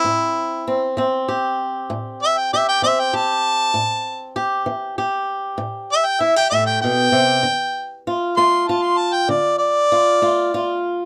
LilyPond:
<<
  \new Staff \with { instrumentName = "Harmonica" } { \time 12/8 \key a \minor \tempo 4. = 65 e'4. r2 e''16 g''16 e''16 g''16 e''16 g''16 a''4~ | a''4 r2 r8 e''16 g''16 e''16 g''16 e''16 g''16 g''4~ | g''4 r8 c'''8 a''16 c'''16 a''16 g''16 d''8 d''2 r8 | }
  \new Staff \with { instrumentName = "Steel-string acoustic guitar" } { \time 12/8 \key a \minor << { r4 c'8 c'8 g'2 g'8 c'8 g'4 | r4 g'4 g'2 e'16 g'4.~ g'16 | r4 f'8 f'8 f'2 f'8 f'8 f'4 | } \\ { a,4 r8 e4 r8 a,4 r8 e4 r8 | a,4 r8 e4 r8 a,4 r8 a,8 b,8 c8 | d4 r8 a4 r8 d4 r8 a4 r8 | } >> }
>>